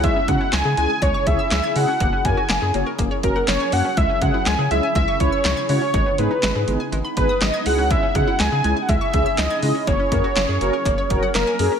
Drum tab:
HH |xxxxxxxo|xxxxxxxo|xxxxxxxo|xxxxxxxo|
CP |--x---x-|--x---x-|--x---x-|--x---x-|
SD |--o---o-|--o---o-|--o---o-|--o---o-|
BD |oo--oo--|oo--oo--|oo--oo--|o----o--|

HH |xxxxxxxo|xxxxxxxo|
CP |--x---x-|--x---x-|
SD |--o---o-|--o---o-|
BD |oo--oo--|oo--oo--|